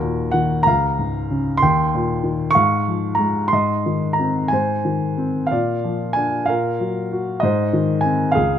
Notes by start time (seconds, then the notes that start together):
Already playing: D#2 F#4 A#4
0.02 A#2
0.31 D#3 F#5
0.63 C#2 A#5
0.67 F5
0.99 G#2
1.31 C#3
1.57 C6
1.62 D#2 G5
1.95 A#2
2.24 D#3
2.51 C#6
2.55 G#2 F5
2.88 F3
3.15 A#5
3.19 G#3
3.48 C6
3.52 G#2 D#5
3.86 D#3
4.13 A#5
4.19 C4
4.48 G#2 G#5
4.53 C5
4.85 D#3
5.18 C4
5.47 F5
5.51 A#2 D5
5.84 F3
6.13 D4 G#5
6.46 A#2 A#4 F5
6.80 F#3
7.12 F#4
7.40 G#2 D#5
7.44 C5
7.73 D#3
8.01 G#5
8.05 C4
8.32 G#4 F5
8.37 C#2